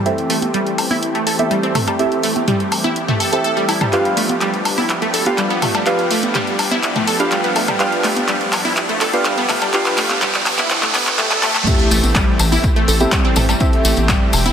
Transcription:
Already playing: E3 A3 C4 G4, riser
0.06 C4 E4 G4 A4 E5, closed hi-hat
0.18 closed hi-hat
0.30 A1 A3, open hi-hat
0.42 A1, closed hi-hat, high conga
0.54 G3, closed hi-hat
0.67 closed hi-hat
0.78 A1, open hi-hat, high woodblock
0.91 E4, open hi-hat, high conga
1.03 closed hi-hat
1.15 A3, closed hi-hat
1.27 A1 A4, open hi-hat
1.39 C4 E4 G4 A4 E5, closed hi-hat, high conga
1.51 G3, closed hi-hat
1.63 C4, closed hi-hat
1.75 A1 A3, mid tom, open hi-hat, high woodblock
1.87 G3, closed hi-hat, high woodblock
1.99 C4 E4 G4 A4 E5, closed hi-hat
2.12 closed hi-hat
2.23 A1 A3, open hi-hat
2.36 A1, closed hi-hat, high conga
2.48 G3, closed hi-hat, mid tom
2.60 closed hi-hat
2.72 E1, open hi-hat, high woodblock
2.84 E4, closed hi-hat, high conga
2.96 closed hi-hat
3.08 A3, closed hi-hat, mid tom
3.20 A1 A4, open hi-hat
3.33 C4 E4 G4 A4 E5, closed hi-hat
3.44 A4, closed hi-hat
3.57 G3, closed hi-hat
3.68 A1 E4, open hi-hat, high woodblock
3.81 G3, closed hi-hat, mid tom, high woodblock
3.93 F3 B3 D4 F4 G4 B4 F5, clap, closed hi-hat
4.05 closed hi-hat
4.17 G1 A3, open hi-hat
4.29 G1, closed hi-hat, high conga
4.41 G3, clap, closed hi-hat
4.54 closed hi-hat
4.65 G1, open hi-hat, high woodblock
4.78 E4, open hi-hat, high conga
4.90 clap, closed hi-hat
5.02 A3, closed hi-hat
5.14 G1 A4, open hi-hat
5.26 D4 F4 G4 B4 F5, closed hi-hat, high conga
5.38 G3, clap, closed hi-hat
5.50 B3, closed hi-hat
5.62 G1 A3, mid tom, open hi-hat, high woodblock
5.75 G3, closed hi-hat, high woodblock
5.86 D4 F4 G4 B4 F5, clap, closed hi-hat
5.99 closed hi-hat
6.11 G1 A3, open hi-hat
6.23 G1, closed hi-hat, high conga
6.35 G3, clap, closed hi-hat, mid tom
6.47 closed hi-hat
6.59 D1, open hi-hat, high woodblock
6.71 E4, closed hi-hat, high conga
6.83 clap, closed hi-hat
6.96 A3, closed hi-hat, mid tom
7.07 G1 A4, open hi-hat
7.20 D4 F4 G4 B4 F5, closed hi-hat
7.32 G3, clap, closed hi-hat
7.44 B3, closed hi-hat
7.56 G1 A3, open hi-hat, high woodblock
7.68 G3, closed hi-hat, mid tom, high woodblock
7.80 D4 F4 G4 B4 F5, clap, closed hi-hat
7.92 closed hi-hat
8.04 G1 A3, clap, open hi-hat
8.17 G1, closed hi-hat, high conga
8.28 G3, clap, closed hi-hat
8.41 closed hi-hat
8.53 G1, clap, open hi-hat, high woodblock
8.65 E4, open hi-hat, high conga
8.77 clap, closed hi-hat
8.89 A3, closed hi-hat
9.01 G1 A4, clap, open hi-hat
9.13 D4 F4 G4 B4 F5, closed hi-hat, high conga
9.25 G3, clap, closed hi-hat
9.38 B3, closed hi-hat
9.49 G1 A3, clap, mid tom, open hi-hat, high woodblock
9.62 G3, closed hi-hat, high woodblock
9.73 D4 F4 G4 B4 F5, clap, closed hi-hat
9.86 clap, closed hi-hat
9.98 A3, clap, open hi-hat
10.10 G1, clap, closed hi-hat, high conga
10.22 G3, clap, closed hi-hat, mid tom
10.34 clap, closed hi-hat
10.46 clap, open hi-hat, high woodblock
10.58 E4, clap, closed hi-hat, high conga
10.70 clap, closed hi-hat
10.83 A3, clap, closed hi-hat, mid tom
10.94 G1 B3, clap, open hi-hat
11.07 clap, closed hi-hat
11.19 A3, clap, closed hi-hat
11.31 A4, clap, closed hi-hat
11.43 G1 A3, clap, open hi-hat, high woodblock
11.55 A3, clap, closed hi-hat, mid tom, high woodblock
11.67 E3 A3 C4 E4 G4 A4 E5, kick, closed hi-hat, crash, tambourine, impact
11.80 closed hi-hat
11.91 A1 A3, open hi-hat, tambourine
12.03 A1, closed hi-hat, tambourine, high conga
12.15 G3, kick, clap, closed hi-hat, tambourine
12.39 A1, open hi-hat, tambourine, high woodblock
12.52 E4, open hi-hat, tambourine, high conga
12.64 kick, closed hi-hat, tambourine
12.76 A3, closed hi-hat
12.88 A1 A4, open hi-hat, tambourine
13.00 C4 E4 G4 A4 E5, closed hi-hat, tambourine, high conga
13.12 G3, kick, clap, closed hi-hat, tambourine
13.25 C4
13.36 A1 A3, mid tom, open hi-hat, tambourine, high woodblock
13.49 G3, closed hi-hat, tambourine, high woodblock
13.60 C4 E4 G4 A4 E5, kick, closed hi-hat, tambourine
13.73 closed hi-hat
13.85 A1 A3, open hi-hat, tambourine
13.96 A1, closed hi-hat, tambourine, high conga
14.09 G3, kick, clap, closed hi-hat, mid tom, tambourine
14.33 E1, open hi-hat, tambourine, high woodblock
14.46 E4, closed hi-hat, tambourine, high conga

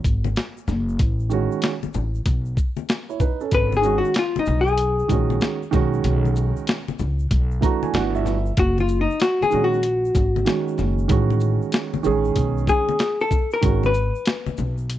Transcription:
0.04 G#1, kick, closed hi-hat, shaker
0.24 high conga, shaker
0.36 snare, closed hi-hat, shaker
0.57 shaker
0.68 F#1, snare, low conga, shaker
0.89 shaker
0.99 A1, kick, closed hi-hat, shaker
1.20 shaker
1.30 D#3 G#3 C#4 F#4, shaker
1.52 shaker
1.62 snare, closed hi-hat, shaker
1.83 muted upright bass stroke, high conga, shaker
1.94 A1, low conga, shaker
2.15 shaker
2.26 B1, kick, closed hi-hat, shaker
2.45 shaker
2.57 kick, shaker
2.77 high conga, shaker
2.89 snare, closed hi-hat, shaker
3.09 E4 C#5, shaker
3.20 D#4 B4, kick, low conga, shaker
3.41 C#4 A4, shaker
3.51 G#1 B4, kick, closed hi-hat, shaker
3.72 high conga, shaker
3.77 G#4
3.81 D#3 G#3 C#4 F#4, shaker
3.98 F#4
4.05 shaker
4.14 snare, closed hi-hat, shaker
4.19 F4
4.36 D#4, muted upright bass stroke, high conga, shaker
4.46 low conga, shaker
4.47 B1, shaker
4.61 G#4
4.67 shaker
4.78 closed hi-hat, shaker
4.99 shaker
5.08 A#1 D#3 G#3 C#4 F#4, kick, closed hi-hat, low conga, shaker
5.30 high conga, shaker
5.41 snare, closed hi-hat, shaker
5.62 shaker
5.71 B1 D#3 G#3 C#4 F#4, kick, snare, low conga, shaker
5.93 shaker
6.04 B1, closed hi-hat, shaker
6.25 high conga, shaker
6.36 shaker
6.56 shaker
6.67 snare, closed hi-hat, shaker
6.88 muted upright bass stroke, high conga, shaker
6.99 C#2, low conga, shaker
7.19 shaker
7.31 B1, kick, closed hi-hat, shaker
7.51 shaker
7.61 E3 A3 D4 F#4 A#5, kick, closed hi-hat, low conga, shaker
7.83 G#5, high conga, shaker
7.93 G1 E3 A3 D4 F#4 F#5, snare, closed hi-hat, shaker
8.15 E5, shaker
8.26 snare, low conga, shaker
8.46 shaker
8.57 F#1 F#4, kick, closed hi-hat, shaker
8.78 F4, high conga, shaker
8.88 shaker
8.90 shaker
9.01 D#4
9.10 shaker
9.20 F#4, snare, closed hi-hat, shaker
9.41 G#4, muted upright bass stroke, high conga, shaker
9.50 A#1 D#3 G#3 C#4, low conga, shaker
9.53 F#4, shaker
9.64 F#4
9.73 shaker
9.83 closed hi-hat, shaker
10.05 shaker
10.15 G#1, kick, closed hi-hat, low conga, shaker
10.36 high conga, shaker
10.45 D#3 G#3 C#4 F#4, snare, closed hi-hat, shaker
10.68 shaker
10.78 F#1, snare, low conga, shaker
10.98 shaker
11.08 A1 D#3 G#3 C#4 F#4, kick, closed hi-hat, shaker
11.30 high conga, shaker
11.40 shaker
11.42 shaker
11.62 shaker
11.72 snare, closed hi-hat, shaker
11.94 muted upright bass stroke, high conga, shaker
12.03 D#3 G#3, low conga, shaker
12.05 A1 C#4 G#4, shaker
12.25 shaker
12.36 B1, kick, closed hi-hat, shaker
12.57 shaker
12.67 G#4, kick, low conga, shaker
12.89 high conga, shaker
12.99 snare, closed hi-hat, shaker
13.20 A4, shaker
13.31 kick, low conga, shaker
13.51 A#4, shaker
13.61 G#1 D#3 G#3 C#4 F#4, kick, closed hi-hat, shaker
13.83 B4, high conga, shaker
13.94 shaker
14.15 shaker
14.25 snare, closed hi-hat, shaker
14.46 muted upright bass stroke, high conga, shaker
14.57 B1, low conga, shaker
14.78 shaker
14.90 closed hi-hat, shaker

